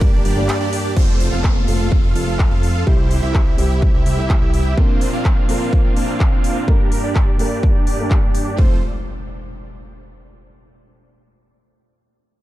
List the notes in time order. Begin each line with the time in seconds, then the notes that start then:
Already playing: G1 G2 G3 A#3 D4 G4 A#4 D5
0.01 kick, ride
0.13 G1 D4 G4 D5
0.25 G1 D4 G4 D5, open hi-hat
0.36 G2 G3 A#3 D4 D5
0.49 clap, ride
0.61 D4 G4 D5
0.73 open hi-hat
0.95 F1 A3 C4 F4 A4 C5, kick, crash, downlifter
1.20 open hi-hat
1.32 F1 F4 A4 F5
1.44 kick, clap
1.67 F1 A3 C4 F4 A4 C5 F5, open hi-hat
1.92 kick
2.04 F1 F4 A4 F5
2.15 F1 F4 A4 F5, open hi-hat
2.39 kick, clap
2.51 F2 F4 A4 F5
2.63 open hi-hat
2.86 C3 G3 C4 E4 G4 C5, kick
3.11 open hi-hat
3.23 C2 E4 G4 E5
3.34 kick, clap
3.57 C2 C3 G3 C4 E4 G4 C5 E5, open hi-hat
3.82 kick
3.94 C2 E4 G4 E5
4.06 C2 E4 G4 E5, open hi-hat
4.17 C3 G3 C4 E4 C5
4.30 kick, clap
4.42 C2 E4 G4 E5
4.54 open hi-hat
4.76 A#2 F3 A#3 C4 D4 F4 A#4 C5, kick
5.01 open hi-hat
5.13 A#3 C4 D4 F4 F5
5.25 kick, clap
5.48 A#2 F3 A#3 C4 D4 F4 A#4 F5, open hi-hat
5.73 kick
5.85 A#3 C4 D4 F4 F5
5.96 A#3 C4 D4 F4 F5, open hi-hat
6.20 kick, clap
6.32 A#3 C4 D4 F4 F5
6.44 open hi-hat
6.67 G2 G3 A#3 D4 G4 A#4, kick
6.92 open hi-hat
7.04 D4 G4 D5
7.15 kick, clap
7.38 G2 G3 A#3 D4 G4 A#4 D5, open hi-hat
7.63 kick
7.75 D4 G4 D5
7.87 D4 G4 D5, open hi-hat
7.98 G2 G3 A#3 D4 A#4
8.11 kick, clap
8.23 D4 G4 D5
8.35 open hi-hat
8.57 F1 A3 C4 F4 A4 C5, kick, impact